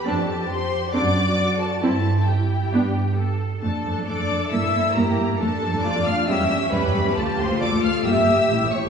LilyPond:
<<
  \new Staff \with { instrumentName = "Violin section" } { \time 4/4 \key g \mixolydian \tempo 4 = 135 a''4 c'''4 d'''4. a''8 | a''4 g''2 r4 | \key d \minor a''4 d'''4 e'''4 bes''4 | a''4 d'''8 f'''8 e'''4 b''4 |
a''8 c'''8 d'''8 f'''8 e'''4. cis'''8 | }
  \new Staff \with { instrumentName = "Violin section" } { \time 4/4 \key g \mixolydian a'4 c''4 d''4. a'8 | a'4 g'2 r4 | \key d \minor a'4 d''4 e''4 bes'4 | a'4 d''8 f''8 e''4 b'4 |
a'8 c''8 d''8 f''8 e''4. cis''8 | }
  \new Staff \with { instrumentName = "Cello section" } { \time 4/4 \key g \mixolydian g'2 fis'2 | e'4 e'4 g'4 a'4 | \key d \minor a'2. g'4 | a'4 f'4 g'4 g'4~ |
g'4 a'4 g'4 e'4 | }
  \new Staff \with { instrumentName = "Viola section" } { \time 4/4 \key g \mixolydian << { d'8 r4. d'8 r4. | e'8 r4. d'8 r4. | \key d \minor d'2 e'2 | d'2 cis'2 |
f'2 g'2 | } \\ { c'8 r4. c'8 r4. | c'8 r4. b8 r4. | a16 r16 a16 a16 a16 a16 a16 r16 bes16 bes16 bes16 r16 bes16 bes16 bes16 bes16 | a16 r16 a16 a16 a16 a16 a16 r16 g16 g16 g16 r16 g16 g16 g16 g16 |
a16 r16 a16 a16 a16 a16 a16 r16 bes16 bes16 bes16 r16 a16 a16 a16 a16 | } >> }
  \new Staff \with { instrumentName = "Double bass section" } { \clef bass \time 4/4 \key g \mixolydian f,8. r4 r16 fis,8. r4 r16 | g,8. r4 r16 g,8. r4 r16 | \key d \minor f,16 r16 f,16 f,16 f,16 f,16 f,16 r16 g,16 g,16 g,16 r16 g,16 g,16 g,16 g,16 | f,16 r16 f,16 f,16 f,16 f,16 f,16 r16 e,16 e,16 e,16 r16 e,16 e,16 e,16 e,16 |
d,16 r16 d,16 d,16 d,16 d,16 d,16 r16 g,,16 g,,16 g,,16 r16 a,,16 a,,16 a,,16 a,,16 | }
>>